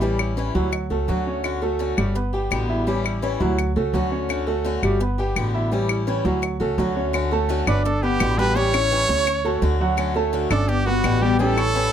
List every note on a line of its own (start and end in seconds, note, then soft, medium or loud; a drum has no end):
0.00 0.49 A1 medium
0.00 0.18 E3 medium
0.00 0.31 G3 medium
0.00 0.19 G3 medium
0.00 0.19 C#4 medium
0.00 0.18 E4 medium
0.00 0.31 G4 medium
0.19 0.36 G3 soft
0.19 0.37 C#4 soft
0.19 0.36 E4 soft
0.19 claves medium
0.37 0.54 E3 medium
0.37 0.55 G3 medium
0.37 0.52 C#4 medium
0.37 0.55 C#4 medium
0.37 0.54 E4 medium
0.37 0.52 C#5 medium
0.55 0.88 D2 medium
0.55 0.84 F#3 medium
0.55 0.72 G3 soft
0.55 0.72 C#4 soft
0.55 0.72 E4 medium
0.55 0.84 F#4 medium
0.72 muted steel-string acoustic guitar stroke medium
0.72 claves medium
0.90 1.07 C#2 medium
0.90 1.05 A3 medium
0.90 1.07 A3 soft
0.90 1.08 C#4 soft
0.90 1.08 F#4 soft
0.90 1.06 A4 medium
1.08 1.92 D2 medium
1.08 1.43 D3 medium
1.08 1.23 F#3 medium
1.08 1.43 A3 medium
1.08 1.44 C#4 medium
1.08 1.24 F#4 medium
1.08 1.44 F#4 medium
1.27 1.56 C#4 medium
1.27 1.56 C#5 medium
1.44 1.61 D3 medium
1.44 1.61 A3 medium
1.44 1.61 C#4 medium
1.44 1.60 F#4 medium
1.44 claves medium
1.62 1.91 A3 medium
1.62 1.79 A3 soft
1.62 1.79 C#4 soft
1.62 1.79 F#4 soft
1.62 1.92 A4 medium
1.79 1.97 D3 medium
1.79 1.97 A3 medium
1.79 1.97 C#4 medium
1.79 1.96 F#4 medium
1.97 2.47 G1 medium
1.97 2.12 G3 medium
1.97 2.15 A3 soft
1.97 2.15 C#4 soft
1.97 2.15 F#4 soft
1.97 2.12 G4 medium
1.97 claves medium
2.15 2.30 B3 medium
2.15 2.30 B4 medium
2.15 muted steel-string acoustic guitar stroke medium
2.33 2.50 G3 soft
2.33 2.51 B3 soft
2.33 2.50 G4 soft
2.33 2.63 G4 medium
2.33 2.63 G5 medium
2.51 3.35 A1 medium
2.51 2.86 B2 medium
2.51 2.86 D3 medium
2.51 2.86 G3 medium
2.51 2.86 B3 medium
2.51 2.87 G4 medium
2.51 claves medium
2.69 2.84 E4 medium
2.69 2.84 E5 medium
2.87 3.04 E3 medium
2.87 3.16 G3 medium
2.87 3.04 G3 medium
2.87 3.04 C#4 medium
2.87 3.03 E4 medium
2.87 3.16 G4 medium
3.04 3.22 G3 soft
3.04 3.22 C#4 soft
3.04 3.22 E4 soft
3.04 claves medium
3.22 3.40 E3 medium
3.22 3.40 G3 medium
3.22 3.37 C#4 medium
3.22 3.40 C#4 medium
3.22 3.39 E4 medium
3.22 3.38 C#5 medium
3.40 3.74 D2 loud
3.40 3.70 F#3 medium
3.40 3.58 G3 soft
3.40 3.58 C#4 medium
3.40 3.57 E4 soft
3.40 3.70 F#4 medium
3.58 muted steel-string acoustic guitar stroke medium
3.58 claves medium
3.76 3.92 C#2 medium
3.76 3.91 A3 medium
3.76 3.93 A3 soft
3.76 3.94 C#4 soft
3.76 3.93 F#4 soft
3.76 3.91 A4 medium
3.93 4.77 D2 medium
3.93 4.28 D3 medium
3.93 4.09 F#3 medium
3.93 4.29 A3 medium
3.93 4.29 C#4 medium
3.93 4.09 F#4 medium
3.93 4.29 F#4 medium
4.12 4.41 C#4 medium
4.12 4.41 C#5 medium
4.29 4.46 D3 medium
4.29 4.47 A3 medium
4.29 4.46 C#4 medium
4.29 4.45 F#4 medium
4.29 claves medium
4.47 4.76 A3 medium
4.47 4.64 A3 soft
4.47 4.64 C#4 soft
4.47 4.64 F#4 soft
4.47 4.77 A4 medium
4.64 4.82 D3 medium
4.64 4.82 A3 medium
4.64 4.82 C#4 medium
4.64 4.82 F#4 medium
4.83 5.32 G1 medium
4.83 4.98 G3 medium
4.83 5.00 A3 soft
4.83 5.00 C#4 soft
4.83 5.00 F#4 soft
4.83 4.98 G4 medium
4.83 claves medium
5.00 5.16 B3 medium
5.00 5.16 B4 medium
5.00 muted steel-string acoustic guitar stroke medium
5.18 5.36 G3 soft
5.18 5.36 B3 soft
5.18 5.35 G4 medium
5.18 5.48 G4 medium
5.18 5.48 G5 medium
5.36 6.19 A1 medium
5.36 5.71 B2 medium
5.36 5.71 D3 medium
5.36 5.71 G3 medium
5.36 5.72 B3 medium
5.36 5.72 G4 medium
5.36 claves medium
5.54 5.69 E4 medium
5.54 5.69 E5 medium
5.72 5.89 E3 medium
5.72 6.01 G3 medium
5.72 5.89 G3 medium
5.72 5.89 C#4 medium
5.72 5.88 E4 medium
5.72 6.01 G4 medium
5.89 6.06 G3 soft
5.89 6.07 C#4 soft
5.89 6.07 E4 soft
5.89 claves medium
6.07 6.24 E3 medium
6.07 6.25 G3 medium
6.07 6.22 C#4 medium
6.07 6.24 C#4 medium
6.07 6.24 E4 medium
6.07 6.22 C#5 medium
6.25 6.58 D2 medium
6.25 6.54 F#3 medium
6.25 6.42 G3 soft
6.25 6.42 C#4 medium
6.25 6.42 E4 soft
6.25 6.55 F#4 medium
6.42 muted steel-string acoustic guitar stroke medium
6.42 claves medium
6.60 6.77 C#2 medium
6.60 6.75 A3 medium
6.60 6.78 A3 soft
6.60 6.78 C#4 soft
6.60 6.77 F#4 medium
6.60 6.76 A4 medium
6.78 7.61 D2 medium
6.78 7.12 D3 medium
6.78 6.93 F#3 medium
6.78 7.13 A3 medium
6.78 7.13 C#4 medium
6.78 6.93 F#4 medium
6.78 7.14 F#4 medium
6.96 7.11 C#4 medium
6.96 7.11 C#5 medium
7.13 7.31 D3 medium
7.13 7.31 A3 medium
7.13 7.31 C#4 medium
7.13 7.30 F#4 medium
7.13 claves medium
7.31 7.61 A3 medium
7.31 7.48 A3 soft
7.31 7.49 C#4 soft
7.31 7.48 F#4 medium
7.31 7.61 A4 medium
7.31 7.61 A5 medium
7.49 7.66 D3 medium
7.49 7.67 A3 medium
7.49 7.67 C#4 medium
7.49 7.66 F#4 medium
7.67 8.17 G1 medium
7.67 7.85 A3 soft
7.67 7.85 C#4 medium
7.67 7.96 D4 medium
7.67 7.84 D4 medium
7.67 7.84 F#4 medium
7.67 7.85 B4 medium
7.67 7.97 D5 medium
7.67 7.97 D6 medium
7.67 claves medium
7.85 8.04 D4 medium
7.85 8.04 A4 medium
7.85 muted steel-string acoustic guitar stroke medium
8.03 8.20 G3 soft
8.03 8.32 B3 medium
8.03 8.20 B3 soft
8.03 8.40 G4 loud
8.03 8.20 G4 soft
8.03 8.32 B4 medium
8.03 8.32 B5 medium
8.20 9.03 A1 medium
8.20 8.55 B2 medium
8.20 8.55 D3 medium
8.20 8.55 G3 medium
8.20 8.56 B3 medium
8.20 8.56 G4 medium
8.20 claves medium
8.38 8.53 G3 medium
8.38 8.57 D4 medium
8.38 8.53 G4 medium
8.38 8.57 B4 loud
8.38 8.53 G5 medium
8.55 8.73 E3 medium
8.55 8.70 G3 medium
8.55 8.73 G3 medium
8.55 8.73 C#4 medium
8.55 8.72 E4 medium
8.55 8.71 G4 medium
8.55 9.80 C#5 loud
8.55 8.71 G5 medium
8.73 8.90 G3 soft
8.73 9.03 C#4 medium
8.73 8.91 C#4 soft
8.73 8.91 E4 soft
8.73 9.03 C#5 medium
8.73 9.03 C#6 medium
8.73 claves medium
8.91 9.08 E3 medium
8.91 9.09 G3 medium
8.91 9.09 C#4 medium
8.91 9.08 E4 medium
9.09 9.59 D2 loud
9.09 9.27 G3 soft
9.09 9.38 C#4 medium
9.09 9.26 C#4 soft
9.09 9.26 E4 medium
9.09 9.38 C#5 medium
9.09 9.39 C#6 medium
9.27 muted steel-string acoustic guitar stroke medium
9.27 claves medium
9.45 9.74 A3 medium
9.45 9.61 A3 soft
9.45 9.62 C#4 soft
9.45 9.62 F#4 medium
9.45 9.74 A4 medium
9.45 9.74 A5 medium
9.62 10.45 D2 medium
9.62 9.96 D3 medium
9.62 9.96 A3 medium
9.62 9.97 C#4 medium
9.62 9.97 F#4 medium
9.80 10.09 F#3 medium
9.80 10.09 F#4 medium
9.80 10.10 F#5 medium
9.97 10.15 D3 medium
9.97 10.15 A3 medium
9.97 10.14 C#4 medium
9.97 10.13 F#4 medium
9.97 claves medium
10.14 10.45 A3 medium
10.14 10.32 A3 soft
10.14 10.33 C#4 soft
10.14 10.32 F#4 medium
10.14 10.45 A4 medium
10.14 10.45 A5 medium
10.33 10.50 D3 medium
10.33 10.50 A3 medium
10.33 10.50 C#4 medium
10.33 10.49 F#4 medium
10.50 11.00 G1 loud
10.50 10.68 A3 soft
10.50 10.68 C#4 soft
10.50 10.80 D4 medium
10.50 10.68 F#4 medium
10.50 10.70 A4 loud
10.50 10.80 D5 medium
10.50 10.81 D6 medium
10.50 claves medium
10.68 10.86 B3 medium
10.68 10.88 G4 loud
10.68 muted steel-string acoustic guitar stroke medium
10.86 11.03 G3 soft
10.86 11.16 B3 medium
10.86 11.04 B3 soft
10.86 11.24 F#4 loud
10.86 11.03 G4 medium
10.86 11.16 B4 medium
10.86 11.16 B5 medium
11.04 11.87 A1 medium
11.04 11.39 B2 medium
11.04 11.39 D3 medium
11.04 11.38 G3 medium
11.04 11.39 B3 medium
11.04 11.39 G4 medium
11.04 claves medium
11.22 11.36 G3 medium
11.22 11.40 B3 medium
11.22 11.37 G4 medium
11.22 11.39 G4 loud
11.22 11.37 G5 medium
11.39 11.56 E3 medium
11.39 11.54 G3 medium
11.39 11.57 G3 medium
11.39 11.56 C#4 medium
11.39 11.55 E4 medium
11.39 11.54 G4 medium
11.39 11.93 A4 loud
11.39 11.54 G5 medium
11.57 11.74 G3 soft
11.57 11.86 C#4 medium
11.57 11.75 C#4 soft
11.57 11.74 E4 soft
11.57 11.87 C#5 medium
11.57 11.87 C#6 medium
11.57 claves medium
11.75 11.92 E3 medium
11.75 11.92 G3 medium
11.75 11.92 C#4 medium
11.75 11.91 E4 medium